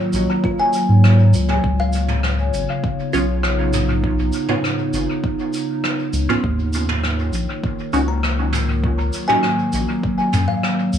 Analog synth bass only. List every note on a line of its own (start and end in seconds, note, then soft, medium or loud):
0.13 0.27 A#1 medium
0.89 1.35 G#2 medium
1.33 1.60 C#2 medium
1.64 2.51 C#2 loud
2.53 2.67 G#1 medium
3.14 4.31 B1 medium
4.93 5.07 G#1 medium
6.13 6.27 C#2 loud
6.44 7.31 D#2 loud
7.33 7.47 A#1 medium
7.93 9.11 C#2 medium
9.73 9.87 A#1 medium
10.34 10.47 F#2 loud
10.93 10.98 D#2 loud